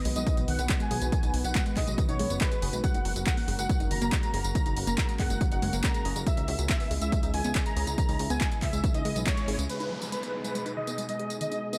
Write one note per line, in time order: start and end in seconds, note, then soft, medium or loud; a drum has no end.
0.05 0.14 B1 medium
0.05 0.20 D#3 medium
0.05 0.15 G#3 medium
0.05 0.20 B3 medium
0.05 0.20 F#4 medium
0.05 0.20 B4 medium
0.05 open hi-hat loud
0.16 0.24 B1 medium
0.16 0.23 G#3 medium
0.16 0.37 D#5 medium
0.16 closed hi-hat soft
0.16 tambourine medium
0.26 0.34 D#3 medium
0.26 0.31 G#3 medium
0.26 0.34 B3 medium
0.26 0.34 F#4 medium
0.26 0.34 B4 medium
0.26 kick loud
0.26 closed hi-hat medium
0.26 tambourine soft
0.37 0.46 B1 medium
0.37 0.52 D#3 medium
0.37 0.52 B3 medium
0.37 0.45 D#4 medium
0.37 0.52 F#4 medium
0.37 0.52 B4 medium
0.37 closed hi-hat soft
0.37 tambourine soft
0.48 0.56 B1 medium
0.48 0.58 D#3 medium
0.48 0.69 F#5 medium
0.48 open hi-hat loud
0.59 0.67 B1 medium
0.59 0.74 D#3 medium
0.59 0.74 B3 medium
0.59 0.69 B3 loud
0.59 0.74 F#4 medium
0.59 0.74 B4 medium
0.59 closed hi-hat soft
0.59 tambourine medium
0.69 0.74 G#3 medium
0.69 kick loud
0.69 clap loud
0.69 closed hi-hat medium
0.69 tambourine soft
0.80 0.88 D#3 medium
0.80 0.90 G#3 medium
0.80 0.88 B3 medium
0.80 0.88 F#4 medium
0.80 0.88 B4 medium
0.80 1.01 G#5 medium
0.80 closed hi-hat soft
0.80 tambourine soft
0.91 0.99 B1 medium
0.91 1.06 D#3 medium
0.91 1.06 B3 medium
0.91 1.06 F#4 medium
0.91 0.98 G#4 medium
0.91 1.06 B4 medium
0.91 open hi-hat loud
1.02 1.10 B1 medium
1.02 closed hi-hat soft
1.02 tambourine medium
1.12 1.27 D#3 medium
1.12 1.20 D#3 medium
1.12 1.27 B3 medium
1.12 1.27 F#4 medium
1.12 1.27 B4 medium
1.12 1.33 G#5 medium
1.12 kick loud
1.12 closed hi-hat medium
1.12 tambourine medium
1.23 1.31 B1 medium
1.23 1.30 D#4 medium
1.23 closed hi-hat soft
1.23 tambourine soft
1.34 1.42 B1 medium
1.34 1.41 D#3 medium
1.34 1.41 B3 medium
1.34 1.41 F#4 medium
1.34 1.41 B4 medium
1.34 open hi-hat loud
1.44 1.53 B1 medium
1.44 1.59 D#3 medium
1.44 1.55 B3 loud
1.44 1.59 B3 medium
1.44 1.59 F#4 medium
1.44 1.59 B4 medium
1.44 1.65 F#5 medium
1.44 closed hi-hat soft
1.44 tambourine medium
1.55 1.60 G#3 medium
1.55 kick loud
1.55 clap loud
1.55 closed hi-hat medium
1.55 tambourine medium
1.66 1.73 D#3 medium
1.66 1.76 G#3 medium
1.66 1.73 B3 medium
1.66 1.73 F#4 medium
1.66 1.73 B4 medium
1.66 closed hi-hat soft
1.66 tambourine soft
1.77 1.85 B1 medium
1.77 1.92 D#3 medium
1.77 1.92 B3 medium
1.77 1.92 F#4 medium
1.77 1.84 G#4 medium
1.77 1.92 B4 medium
1.77 1.97 D#5 medium
1.77 kick medium
1.77 clap soft
1.77 open hi-hat loud
1.87 1.96 B1 medium
1.87 1.97 G#3 medium
1.87 closed hi-hat soft
1.87 tambourine medium
1.98 2.05 D#3 medium
1.98 2.06 D#3 medium
1.98 2.06 B3 medium
1.98 2.06 F#4 medium
1.98 2.06 B4 medium
1.98 kick loud
1.98 closed hi-hat medium
1.98 tambourine soft
2.09 2.17 B1 medium
2.09 2.24 D#3 medium
2.09 2.24 B3 medium
2.09 2.16 D#4 medium
2.09 2.24 F#4 medium
2.09 2.24 B4 medium
2.09 2.30 C#5 loud
2.09 closed hi-hat soft
2.09 tambourine soft
2.19 2.28 B1 medium
2.19 2.24 G#3 loud
2.19 open hi-hat loud
2.30 2.39 F#1 medium
2.30 2.45 D#3 medium
2.30 2.40 B3 loud
2.30 2.45 B3 medium
2.30 2.45 F#4 medium
2.30 2.45 B4 medium
2.30 closed hi-hat soft
2.30 tambourine medium
2.41 2.45 G#3 medium
2.41 2.69 B4 medium
2.41 kick loud
2.41 clap loud
2.41 closed hi-hat medium
2.41 tambourine medium
2.52 2.59 D#3 medium
2.52 2.59 G#3 medium
2.52 2.59 B3 medium
2.52 2.59 F#4 medium
2.52 2.59 B4 medium
2.52 closed hi-hat soft
2.52 tambourine soft
2.62 2.71 F#1 medium
2.62 2.77 D#3 medium
2.62 2.77 B3 medium
2.62 2.77 F#4 medium
2.62 2.70 G#4 medium
2.62 2.77 B4 medium
2.62 open hi-hat loud
2.73 2.82 B1 medium
2.73 2.82 G#3 medium
2.73 closed hi-hat soft
2.73 tambourine medium
2.84 2.99 C#3 medium
2.84 2.88 G#3 medium
2.84 2.99 A#3 medium
2.84 2.99 F#4 medium
2.84 2.99 A#4 medium
2.84 3.12 F#5 loud
2.84 kick loud
2.84 closed hi-hat medium
2.84 tambourine medium
2.94 3.03 F#1 medium
2.94 3.02 D#4 medium
2.94 closed hi-hat soft
2.94 tambourine soft
3.05 3.14 F#1 medium
3.05 3.13 C#3 medium
3.05 3.12 F#3 medium
3.05 3.13 A#3 medium
3.05 3.13 F#4 medium
3.05 3.13 A#4 medium
3.05 open hi-hat loud
3.16 3.24 F#1 medium
3.16 3.31 C#3 medium
3.16 3.26 F#3 medium
3.16 3.31 A#3 medium
3.16 3.31 F#4 medium
3.16 3.31 A#4 medium
3.16 closed hi-hat soft
3.16 tambourine medium
3.27 3.37 G#3 medium
3.27 3.47 F#5 medium
3.27 kick loud
3.27 clap loud
3.27 closed hi-hat medium
3.27 tambourine medium
3.37 3.45 C#3 medium
3.37 3.45 A#3 medium
3.37 3.42 A#3 medium
3.37 3.45 F#4 medium
3.37 3.45 A#4 medium
3.37 open hi-hat medium
3.37 tambourine soft
3.48 3.56 F#1 medium
3.48 3.63 C#3 medium
3.48 3.58 G#3 medium
3.48 3.63 A#3 medium
3.48 3.63 F#4 medium
3.48 3.63 A#4 medium
3.48 open hi-hat loud
3.59 3.67 F#1 medium
3.59 3.66 G#3 medium
3.59 3.80 F#5 medium
3.59 closed hi-hat soft
3.59 tambourine medium
3.69 3.77 C#3 medium
3.69 3.74 G#3 medium
3.69 3.77 A#3 medium
3.69 3.77 F#4 medium
3.69 3.77 A#4 medium
3.69 kick loud
3.69 closed hi-hat medium
3.69 tambourine soft
3.80 3.89 F#1 medium
3.80 3.95 C#3 medium
3.80 3.95 A#3 medium
3.80 3.87 D#4 medium
3.80 3.95 F#4 medium
3.80 3.95 A#4 medium
3.80 closed hi-hat soft
3.80 tambourine soft
3.91 3.99 F#1 medium
3.91 4.01 D#3 medium
3.91 4.12 A#5 loud
3.91 open hi-hat loud
4.02 4.10 F#1 medium
4.02 4.17 C#3 medium
4.02 4.17 A#3 medium
4.02 4.12 A#3 loud
4.02 4.17 F#4 medium
4.02 4.17 A#4 medium
4.02 closed hi-hat soft
4.02 tambourine medium
4.12 4.17 G#3 medium
4.12 kick loud
4.12 clap loud
4.12 closed hi-hat medium
4.12 tambourine medium
4.23 4.30 C#3 medium
4.23 4.33 G#3 medium
4.23 4.31 A#3 medium
4.23 4.30 F#4 medium
4.23 4.31 A#4 medium
4.23 4.44 A#5 medium
4.23 closed hi-hat medium
4.23 tambourine soft
4.34 4.42 F#1 medium
4.34 4.49 C#3 medium
4.34 4.49 A#3 medium
4.34 4.49 F#4 medium
4.34 4.41 G#4 medium
4.34 4.49 A#4 medium
4.34 open hi-hat loud
4.44 4.53 F#1 medium
4.44 closed hi-hat soft
4.44 tambourine medium
4.55 4.70 C#3 medium
4.55 4.62 D#3 medium
4.55 4.70 A#3 medium
4.55 4.70 F#4 medium
4.55 4.70 A#4 medium
4.55 4.76 A#5 medium
4.55 kick loud
4.55 closed hi-hat medium
4.55 tambourine medium
4.66 4.74 F#1 medium
4.66 4.73 D#4 medium
4.66 closed hi-hat medium
4.66 tambourine soft
4.76 4.85 F#1 medium
4.76 4.84 C#3 medium
4.76 4.84 A#3 medium
4.76 4.84 F#4 medium
4.76 4.84 A#4 medium
4.76 open hi-hat loud
4.87 4.96 F#1 medium
4.87 5.02 C#3 medium
4.87 5.02 A#3 medium
4.87 4.97 A#3 loud
4.87 5.02 F#4 medium
4.87 5.02 A#4 medium
4.87 5.08 A#5 medium
4.87 closed hi-hat medium
4.87 tambourine medium
4.98 5.02 G#3 medium
4.98 kick loud
4.98 clap loud
4.98 closed hi-hat medium
4.98 tambourine medium
5.09 5.16 C#3 medium
5.09 5.19 G#3 medium
5.09 5.16 A#3 medium
5.09 5.16 F#4 medium
5.09 5.16 A#4 medium
5.09 closed hi-hat medium
5.09 tambourine soft
5.19 5.28 F#1 medium
5.19 5.34 C#3 medium
5.19 5.34 A#3 medium
5.19 5.34 F#4 medium
5.19 5.27 G#4 medium
5.19 5.34 A#4 medium
5.19 5.40 F#5 medium
5.19 kick medium
5.19 clap soft
5.19 open hi-hat loud
5.30 5.39 F#1 medium
5.30 5.40 G#3 medium
5.30 closed hi-hat medium
5.30 tambourine medium
5.41 5.48 C#3 medium
5.41 5.48 D#3 medium
5.41 5.48 A#3 medium
5.41 5.48 F#4 medium
5.41 5.48 A#4 medium
5.41 kick loud
5.41 closed hi-hat medium
5.41 tambourine soft
5.52 5.60 F#1 medium
5.52 5.67 C#3 medium
5.52 5.67 A#3 medium
5.52 5.59 D#4 medium
5.52 5.67 F#4 medium
5.52 5.67 A#4 medium
5.52 5.72 F#5 loud
5.52 closed hi-hat medium
5.52 tambourine soft
5.62 5.71 F#1 medium
5.62 5.67 G#3 loud
5.62 open hi-hat medium
5.73 5.81 F#1 medium
5.73 5.88 C#3 medium
5.73 5.83 A#3 loud
5.73 5.88 A#3 medium
5.73 5.88 F#4 medium
5.73 5.88 A#4 medium
5.73 closed hi-hat soft
5.73 tambourine medium
5.84 5.88 G#3 medium
5.84 6.12 A#5 medium
5.84 kick loud
5.84 clap loud
5.84 closed hi-hat medium
5.84 tambourine medium
5.94 6.02 C#3 medium
5.94 6.02 G#3 medium
5.94 6.02 A#3 medium
5.94 6.02 F#4 medium
5.94 6.02 A#4 medium
5.94 closed hi-hat medium
5.94 tambourine soft
6.05 6.14 F#1 medium
6.05 6.20 C#3 medium
6.05 6.20 A#3 medium
6.05 6.20 F#4 medium
6.05 6.12 G#4 medium
6.05 6.20 A#4 medium
6.05 open hi-hat loud
6.16 6.24 F#1 medium
6.16 6.25 G#3 medium
6.16 closed hi-hat soft
6.16 tambourine medium
6.27 6.42 C#3 medium
6.27 6.31 G#3 medium
6.27 6.42 G#3 medium
6.27 6.42 E4 medium
6.27 6.42 G#4 medium
6.27 6.54 E5 loud
6.27 kick loud
6.27 closed hi-hat medium
6.27 tambourine medium
6.37 6.46 C#2 medium
6.37 6.45 D#4 medium
6.37 closed hi-hat medium
6.37 tambourine soft
6.48 6.56 C#2 medium
6.48 6.56 C#3 medium
6.48 6.55 F#3 medium
6.48 6.56 G#3 medium
6.48 6.56 E4 medium
6.48 6.56 G#4 medium
6.48 open hi-hat loud
6.59 6.67 C#2 medium
6.59 6.74 C#3 medium
6.59 6.69 F#3 medium
6.59 6.74 G#3 medium
6.59 6.74 E4 medium
6.59 6.74 G#4 medium
6.59 closed hi-hat medium
6.59 tambourine medium
6.69 6.80 G#3 medium
6.69 6.90 E5 loud
6.69 kick loud
6.69 clap loud
6.69 closed hi-hat medium
6.69 tambourine medium
6.80 6.88 C#3 medium
6.80 6.88 G#3 medium
6.80 6.85 B3 medium
6.80 6.88 E4 medium
6.80 6.88 G#4 medium
6.80 open hi-hat medium
6.80 tambourine soft
6.91 6.99 C#2 medium
6.91 7.06 C#3 medium
6.91 7.06 G#3 medium
6.91 7.00 G#3 medium
6.91 7.06 E4 medium
6.91 7.06 G#4 medium
6.91 open hi-hat loud
7.02 7.10 C#2 medium
7.02 7.09 G#3 medium
7.02 7.22 E5 medium
7.02 closed hi-hat medium
7.02 tambourine medium
7.12 7.20 C#3 medium
7.12 7.17 G#3 medium
7.12 7.20 G#3 medium
7.12 7.20 E4 medium
7.12 7.20 G#4 medium
7.12 kick loud
7.12 closed hi-hat medium
7.12 tambourine soft
7.23 7.31 C#2 medium
7.23 7.38 C#3 medium
7.23 7.38 G#3 medium
7.23 7.30 D#4 medium
7.23 7.38 E4 medium
7.23 7.38 G#4 medium
7.23 closed hi-hat medium
7.23 tambourine soft
7.34 7.42 C#2 medium
7.34 7.44 D#3 medium
7.34 7.55 G#5 loud
7.34 open hi-hat loud
7.44 7.53 C#2 medium
7.44 7.60 C#3 medium
7.44 7.59 G#3 medium
7.44 7.55 B3 loud
7.44 7.59 E4 medium
7.44 7.60 G#4 medium
7.44 closed hi-hat medium
7.44 tambourine medium
7.55 7.60 G#3 medium
7.55 kick loud
7.55 clap loud
7.55 closed hi-hat medium
7.55 tambourine medium
7.66 7.73 C#3 medium
7.66 7.73 G#3 medium
7.66 7.76 G#3 medium
7.66 7.73 E4 medium
7.66 7.73 G#4 medium
7.66 7.87 A#5 medium
7.66 closed hi-hat medium
7.66 tambourine soft
7.76 7.85 C#2 medium
7.76 7.92 C#3 medium
7.76 7.92 G#3 medium
7.76 7.92 E4 medium
7.76 7.92 G#4 medium
7.76 7.84 G#4 medium
7.76 open hi-hat loud
7.87 7.96 C#2 medium
7.87 closed hi-hat medium
7.87 tambourine medium
7.98 8.13 C#3 medium
7.98 8.05 D#3 medium
7.98 8.13 G#3 medium
7.98 8.13 E4 medium
7.98 8.13 G#4 medium
7.98 8.19 A#5 medium
7.98 kick loud
7.98 closed hi-hat medium
7.98 tambourine medium
8.09 8.17 C#2 medium
8.09 8.16 D#4 medium
8.09 open hi-hat medium
8.09 tambourine soft
8.19 8.28 C#2 medium
8.19 8.27 C#3 medium
8.19 8.27 G#3 medium
8.19 8.27 E4 medium
8.19 8.27 G#4 medium
8.19 open hi-hat loud
8.30 8.39 C#2 medium
8.30 8.45 C#3 medium
8.30 8.45 G#3 medium
8.30 8.40 B3 loud
8.30 8.45 E4 medium
8.30 8.45 G#4 medium
8.30 8.51 G#5 medium
8.30 closed hi-hat medium
8.30 tambourine medium
8.41 8.45 G#3 medium
8.41 kick loud
8.41 clap loud
8.41 closed hi-hat medium
8.41 tambourine medium
8.51 8.59 C#3 medium
8.51 8.59 G#3 medium
8.51 8.62 G#3 medium
8.51 8.59 E4 medium
8.51 8.59 G#4 medium
8.51 closed hi-hat medium
8.51 tambourine soft
8.62 8.71 C#2 medium
8.62 8.77 C#3 medium
8.62 8.77 G#3 medium
8.62 8.77 E4 medium
8.62 8.77 G#4 medium
8.62 8.70 G#4 medium
8.62 8.83 E5 medium
8.62 kick medium
8.62 clap soft
8.62 open hi-hat loud
8.73 8.81 C#2 medium
8.73 8.83 G#3 medium
8.73 closed hi-hat medium
8.73 tambourine medium
8.84 8.91 C#3 medium
8.84 8.91 D#3 medium
8.84 8.91 G#3 medium
8.84 8.91 E4 medium
8.84 8.91 G#4 medium
8.84 kick loud
8.84 closed hi-hat medium
8.84 tambourine soft
8.94 9.03 C#2 medium
8.94 9.09 C#3 medium
8.94 9.09 G#3 medium
8.94 9.02 D#4 medium
8.94 9.09 E4 medium
8.94 9.09 G#4 medium
8.94 9.15 D#5 loud
8.94 closed hi-hat medium
8.94 tambourine soft
9.05 9.14 C#2 medium
9.05 9.10 G#3 loud
9.05 open hi-hat loud
9.16 9.24 B1 medium
9.16 9.31 C#3 medium
9.16 9.31 G#3 medium
9.16 9.26 B3 loud
9.16 9.31 E4 medium
9.16 9.31 G#4 medium
9.16 closed hi-hat medium
9.16 tambourine medium
9.27 9.31 G#3 medium
9.27 9.54 C#5 medium
9.27 kick loud
9.27 clap loud
9.27 closed hi-hat medium
9.27 tambourine medium
9.37 9.45 C#3 medium
9.37 9.45 G#3 medium
9.37 9.45 E4 medium
9.37 9.45 G#4 medium
9.37 closed hi-hat medium
9.37 tambourine soft
9.48 9.56 G#1 medium
9.48 9.63 C#3 medium
9.48 9.63 G#3 medium
9.48 9.63 E4 medium
9.48 9.63 G#4 medium
9.48 9.55 G#4 medium
9.48 open hi-hat loud
9.59 9.67 C#2 medium
9.59 9.68 G#3 medium
9.59 closed hi-hat medium
9.59 tambourine medium
9.69 9.84 B2 medium
9.69 9.84 G#3 medium
9.69 9.74 G#3 medium
9.69 9.84 D#4 medium
9.69 9.84 G#4 medium
9.69 9.97 B4 medium
9.69 closed hi-hat medium
9.69 tambourine soft
9.69 downlifter medium
9.80 9.87 D#4 medium
9.80 closed hi-hat soft
9.80 tambourine soft
9.91 9.98 B2 medium
9.91 9.98 F#3 medium
9.91 9.98 G#3 medium
9.91 9.98 D#4 medium
9.91 9.98 G#4 medium
10.02 10.17 B2 medium
10.02 10.12 F#3 medium
10.02 10.17 G#3 medium
10.02 10.17 D#4 medium
10.02 10.17 G#4 medium
10.02 closed hi-hat soft
10.02 tambourine medium
10.12 10.22 G#3 medium
10.12 10.33 B4 medium
10.12 closed hi-hat medium
10.12 tambourine soft
10.23 10.30 B2 medium
10.23 10.30 G#3 medium
10.23 10.27 B3 medium
10.23 10.30 D#4 medium
10.23 10.30 G#4 medium
10.23 closed hi-hat soft
10.23 tambourine soft
10.34 10.49 B2 medium
10.34 10.43 G#3 medium
10.34 10.49 G#3 medium
10.34 10.49 D#4 medium
10.34 10.49 G#4 medium
10.44 10.52 G#3 medium
10.44 10.65 B4 medium
10.44 closed hi-hat soft
10.44 tambourine medium
10.55 10.63 B2 medium
10.55 10.63 G#3 medium
10.55 10.60 G#3 medium
10.55 10.63 D#4 medium
10.55 10.63 G#4 medium
10.55 closed hi-hat medium
10.55 tambourine soft
10.66 10.81 B2 medium
10.66 10.81 G#3 medium
10.66 10.81 D#4 medium
10.66 10.73 D#4 medium
10.66 10.81 G#4 medium
10.66 closed hi-hat soft
10.66 tambourine soft
10.77 10.87 D#3 medium
10.77 10.97 D#5 medium
10.87 11.02 B2 medium
10.87 11.02 G#3 medium
10.87 10.98 B3 medium
10.87 11.02 D#4 medium
10.87 11.02 G#4 medium
10.87 closed hi-hat soft
10.87 tambourine medium
10.98 11.02 G#3 medium
10.98 closed hi-hat medium
10.98 tambourine soft
11.09 11.16 B2 medium
11.09 11.16 G#3 medium
11.09 11.19 G#3 medium
11.09 11.16 D#4 medium
11.09 11.16 G#4 medium
11.09 11.30 D#5 medium
11.09 closed hi-hat soft
11.09 tambourine soft
11.19 11.34 B2 medium
11.19 11.34 G#3 medium
11.19 11.34 D#4 medium
11.19 11.34 G#4 medium
11.19 11.27 G#4 medium
11.19 closed hi-hat soft
11.30 closed hi-hat soft
11.30 tambourine medium
11.41 11.56 B2 medium
11.41 11.48 D#3 medium
11.41 11.56 G#3 medium
11.41 11.56 D#4 medium
11.41 11.56 G#4 medium
11.41 11.62 D#5 medium
11.41 closed hi-hat medium
11.41 tambourine soft
11.52 11.59 D#4 medium
11.52 closed hi-hat soft
11.52 tambourine soft
11.62 11.70 B2 medium
11.62 11.70 G#3 medium
11.62 11.70 D#4 medium
11.62 11.70 G#4 medium
11.73 11.78 B2 medium
11.73 11.78 G#3 medium
11.73 11.78 B3 medium
11.73 11.78 D#4 medium
11.73 11.78 G#4 medium
11.73 11.78 D#5 medium
11.73 closed hi-hat soft
11.73 tambourine medium